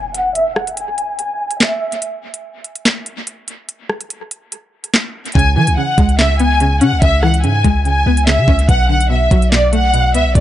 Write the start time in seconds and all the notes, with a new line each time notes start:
Already playing: G#5, impact
0.15 F#5, closed hi-hat
0.35 E5, closed hi-hat
0.56 F#5, cross-stick
0.67 closed hi-hat
0.77 G#5, closed hi-hat
0.98 closed hi-hat
1.19 G#5, closed hi-hat
1.51 closed hi-hat
1.60 E5, snare, clap
1.92 closed hi-hat
2.02 closed hi-hat
2.34 closed hi-hat
2.64 closed hi-hat
2.76 closed hi-hat
2.85 snare, clap
3.06 closed hi-hat
3.27 closed hi-hat
3.48 closed hi-hat
3.69 closed hi-hat
3.90 cross-stick
4.01 closed hi-hat
4.10 closed hi-hat
4.31 closed hi-hat
4.52 closed hi-hat
4.84 closed hi-hat
4.94 snare, clap
5.26 closed hi-hat
5.32 C#2 C#3 G#5, kick, closed hi-hat
5.39 closed hi-hat
5.56 E3 G#5
5.67 C#2, closed hi-hat
5.77 C#3 F#5
5.98 C#2 G#3, kick, closed hi-hat
6.09 closed hi-hat
6.18 C#3 E5, snare, clap
6.39 B3 G#5, closed hi-hat
6.60 C#3, closed hi-hat
6.81 C#3 C#4 F#5, closed hi-hat
6.92 C#2
7.02 C#2 C#3 E5, kick, closed hi-hat
7.23 E3 F#5, cross-stick
7.34 closed hi-hat
7.43 G#2 C#3 G#5, closed hi-hat
7.64 C#2 G#3, kick, closed hi-hat
7.85 C#3 G#5, closed hi-hat
8.06 C#2 B3
8.17 closed hi-hat
8.27 C#3 E5, snare, clap
8.38 C#3
8.48 C#2 C#4, kick
8.59 closed hi-hat
8.69 B1 B2 F#5, kick, closed hi-hat
8.89 D3 F#5
9.01 closed hi-hat
9.10 B2 E5
9.31 B1 F#3, kick, closed hi-hat
9.42 closed hi-hat
9.52 B2 D5, snare, clap
9.73 A3 F#5, closed hi-hat
9.94 B2, closed hi-hat
10.14 C#2 B3 E5, closed hi-hat
10.26 B1
10.35 B1 B2 D5, kick, closed hi-hat